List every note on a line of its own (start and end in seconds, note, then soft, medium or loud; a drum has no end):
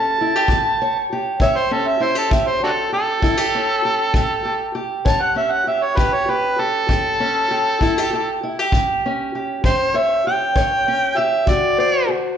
0.00 0.13 A2 medium
0.00 0.54 C#4 medium
0.00 0.21 G4 medium
0.00 0.81 A4 medium
0.00 1.07 A5 loud
0.21 0.36 E4 medium
0.36 0.50 G4 soft
0.48 1.05 A2 medium
0.48 1.12 G4 medium
0.48 kick medium
0.82 1.41 C#5 medium
1.12 2.00 G4 medium
1.40 1.95 A2 medium
1.40 4.19 C#5 medium
1.40 1.59 E5 loud
1.40 kick medium
1.57 1.74 C5 medium
1.71 3.54 C#4 medium
1.71 1.89 A4 medium
1.87 2.04 E5 medium
2.00 2.15 E4 medium
2.00 2.16 C5 medium
2.15 2.31 G4 soft
2.15 2.34 A4 medium
2.31 2.87 A2 medium
2.31 2.62 G4 medium
2.31 2.49 E5 medium
2.31 kick medium
2.47 2.61 C5 medium
2.63 2.70 D4 medium
2.63 2.70 F#4 medium
2.63 2.92 G4 medium
2.63 2.92 A4 medium
2.92 3.22 G4 medium
2.92 4.72 A4 medium
3.22 3.78 A2 medium
3.22 3.37 E4 medium
3.22 kick medium
3.37 3.84 G4 soft
3.55 4.19 C#4 medium
3.85 4.15 G4 medium
4.14 4.70 A2 medium
4.14 4.45 G4 medium
4.14 kick medium
4.45 4.74 G4 medium
4.75 5.67 G4 medium
5.05 5.61 A2 medium
5.05 7.77 C#5 medium
5.05 5.23 A5 medium
5.05 kick medium
5.21 5.36 F#5 medium
5.36 7.19 C#4 medium
5.36 5.53 E5 medium
5.52 5.66 F#5 medium
5.67 5.97 G4 medium
5.67 5.84 E5 medium
5.83 5.99 C#5 medium
5.97 6.52 A2 medium
5.97 6.27 G4 medium
5.97 6.15 B4 medium
5.97 kick medium
6.13 6.31 C#5 medium
6.28 6.58 G4 medium
6.28 6.61 B4 medium
6.59 6.88 G4 medium
6.59 8.39 A4 loud
6.89 7.44 A2 medium
6.89 7.50 G4 medium
6.89 kick medium
7.20 7.77 C#4 medium
7.51 7.77 G4 medium
7.81 8.36 A2 medium
7.81 7.98 E4 medium
7.81 kick medium
7.98 8.12 G4 medium
8.13 8.43 G4 medium
8.43 8.59 E4 medium
8.59 9.34 G4 soft
8.72 9.28 A2 medium
8.72 kick medium
9.06 10.87 C#4 medium
9.35 9.63 G4 medium
9.64 10.19 A2 medium
9.64 10.25 G4 medium
9.64 9.98 C5 medium
9.64 kick medium
9.94 10.55 C#5 medium
9.94 10.25 E5 medium
10.27 11.17 G4 medium
10.27 11.19 G5 medium
10.55 11.11 A2 medium
10.55 11.44 C#5 medium
10.55 kick medium
10.88 11.45 C#4 medium
11.17 11.44 G4 medium
11.17 11.51 E5 medium
11.47 12.03 D3 medium
11.47 12.07 F#4 medium
11.47 11.78 D5 medium
11.47 kick medium
11.78 12.37 C5 medium
11.78 12.08 D5 loud
12.09 12.37 F#4 medium